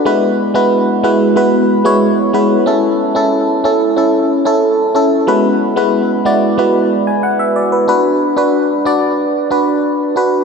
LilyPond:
\new Staff \with { instrumentName = "FM electric piano" } { \time 4/4 \key e \mixolydian \tempo 4 = 92 << { r1 | r1 | r2 r8. gis''16 fis''16 e''16 d''16 b'16~ | b'16 r2. r8. | } \\ { <gis b e' fis' b'>8 r16 <gis b e' fis' b'>8 r16 <gis b e' fis' b'>16 r16 <gis b e' fis' b'>8 r16 <gis b e' fis' cis''>8 r16 <gis b e' fis' b'>16 r16 | <cis' e' a'>8 r16 <cis' e' a'>8 r16 <cis' e' a'>16 r16 <cis' e' a'>8 r16 <cis' e' a'>8 r16 <cis' e' a'>16 r16 | <gis b e' fis' b'>8 r16 <gis b e' fis' b'>8 r16 <gis b e' fis' d''>16 r16 <gis b e' fis' b'>8 r4. | <d' fis' b'>8 r16 <d' fis' b'>8 r16 <d' fis' d''>8. r16 <d' fis' b'>8. r16 <d' fis' b'>16 r16 | } >> }